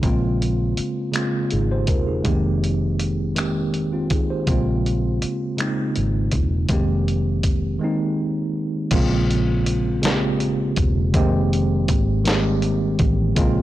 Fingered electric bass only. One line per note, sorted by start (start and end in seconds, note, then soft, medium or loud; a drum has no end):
0.04 0.74 A#1 medium
0.79 muted fingered electric bass stroke soft
1.53 1.89 G#1 medium
1.89 2.22 E1 medium
2.26 4.11 F1 medium
4.11 4.44 A1 medium
4.49 5.18 A#1 medium
5.24 muted fingered electric bass stroke soft
5.98 6.30 G#1 medium
6.34 6.67 E1 medium
6.70 7.77 F1 loud
8.92 10.74 A#1 loud
10.78 11.11 E1 medium
11.15 11.85 F1 loud
11.90 12.96 G#1 medium
13.00 13.33 A1 medium
13.38 13.62 A#1 medium